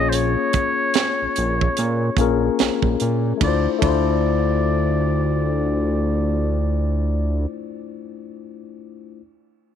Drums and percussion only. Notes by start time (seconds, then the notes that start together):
0.12 closed hi-hat
0.53 kick, closed hi-hat
0.94 snare, closed hi-hat
1.36 closed hi-hat
1.61 kick
1.77 closed hi-hat
2.17 kick, closed hi-hat
2.59 snare, closed hi-hat
2.82 kick
3.00 closed hi-hat
3.41 kick, ride
3.82 kick, ride